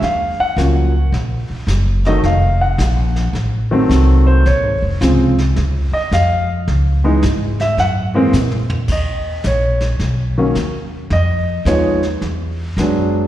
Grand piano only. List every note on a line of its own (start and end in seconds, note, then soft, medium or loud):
0.04 0.39 F5 medium
0.40 1.10 F#5 medium
0.57 0.91 F3 soft
0.57 0.91 F#3 soft
0.57 0.91 A#3 soft
0.57 0.92 C#4 medium
2.07 2.23 D#3 medium
2.07 2.23 F#3 medium
2.07 2.23 A3 medium
2.07 2.24 D#4 medium
2.07 2.24 D#5 medium
2.25 2.61 F5 medium
2.61 3.31 F#5 medium
3.71 4.42 D#3 medium
3.71 4.42 F#3 medium
3.71 4.42 A3 medium
3.71 4.42 C4 medium
4.27 4.45 C5 medium
4.47 4.82 C#5 medium
5.01 5.34 C#3 medium
5.01 5.34 F3 medium
5.01 5.34 G#3 medium
5.01 5.35 C4 medium
5.93 6.11 D#5 medium
6.13 6.48 F5 medium
7.04 7.21 E3 medium
7.04 7.21 G#3 medium
7.04 7.21 B3 medium
7.04 7.21 D#4 medium
7.61 7.78 E5 medium
7.80 8.01 F#5 medium
8.14 8.31 E3 medium
8.14 8.32 G#3 medium
8.14 8.32 A#3 medium
8.14 8.32 C4 medium
8.92 9.42 D#5 medium
9.47 9.81 C#5 medium
10.38 10.54 D#3 medium
10.38 10.54 F#3 medium
10.38 10.54 A#3 medium
10.38 10.54 C#4 medium
11.13 11.63 D#5 medium
11.67 11.99 F3 medium
11.67 12.00 G#3 medium
11.67 12.00 B3 medium
11.67 12.00 D#4 medium
11.67 12.02 C#5 medium
12.79 13.27 F#3 medium
12.79 13.27 G#3 medium
12.79 13.27 B3 medium
12.79 13.27 D4 medium